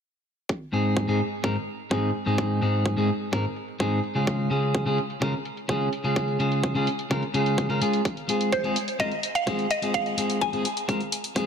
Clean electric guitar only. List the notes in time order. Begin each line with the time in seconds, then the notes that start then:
0.72 G#2 G#3 C4 D#4 G#4
1.08 G#2 G#3 C4 D#4 G#4
1.43 G#2 G#3 C4 D#4 A#4
1.90 G#2 G#3 C4 D#4 G#4
2.26 G#2 G#3 C4 D#4 G#4
2.61 G#2 G#3 C4 D#4 G#4
2.97 G#2 G#3 C4 D#4 G#4
3.32 G#2 G#3 C4 D#4 A#4
3.79 G#2 G#3 C4 D#4 G#4
4.15 C#3 G#3 C#4 F4 G#4
4.50 C#3 G#3 C#4 F4 G#4
4.86 C#3 G#3 C#4 F4 G#4
5.21 C#3 G#3 C#4 F4 A#4
5.68 C#3 G#3 C#4 F4 G#4
6.04 C#3 G#3 C#4 F4 G#4
6.39 C#3 G#3 C#4 F4 G#4
6.75 C#3 G#3 C#4 F4 G#4
7.10 C#3 G#3 C#4 F4 A#4
7.34 C#3 G#3 C#4 F4 G#4
7.69 C#3 G#3 C#4 F4 A#4
7.81 G#3 C#4 F4 G#4
8.28 G#3 C4 F4 G#4
8.64 G#3 C4 F4 G#4
8.99 G#3 C4 F4 A#4
9.46 G#3 C4 F4 G#4
9.82 G#3 C4 F4 G#4
10.17 G#3 C4 F4 G#4
10.53 G#3 C4 F4 G#4
10.88 G#3 C4 F4 A#4
11.35 G#3 C4 F4 G#4